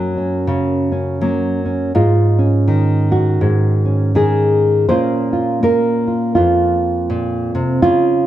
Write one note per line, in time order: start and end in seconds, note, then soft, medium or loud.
0.00 1.91 F#2 medium
0.00 1.20 F#3 medium
0.00 1.21 A#3 medium
0.00 0.16 C#4 soft
0.00 1.95 A#4 medium
0.18 0.91 C#4 soft
0.47 1.21 C#3 medium
0.92 1.64 C#4 soft
1.21 1.91 F#3 medium
1.21 1.91 A#3 soft
1.66 1.91 C#4 soft
1.95 3.40 G#2 medium
1.95 3.11 F4 medium
2.39 3.85 C#4 soft
2.68 4.14 D#3 medium
3.12 4.15 F#4 medium
3.41 4.85 G#2 medium
3.85 4.90 C#4 soft
4.15 4.89 D#3 medium
4.15 4.88 G#4 medium
4.89 6.36 A#2 medium
4.89 5.62 A#3 soft
4.89 6.80 C#4 soft
4.89 5.32 F4 soft
4.89 5.62 C5 medium
5.33 6.07 F4 soft
5.63 7.80 A#3 medium
5.63 6.35 A#4 medium
6.07 6.34 F4 soft
6.35 7.84 F2 medium
6.35 7.81 F4 medium
7.10 7.53 A#2 medium
7.55 7.83 C3 medium
7.82 8.27 C#3 medium
7.82 8.27 F4 loud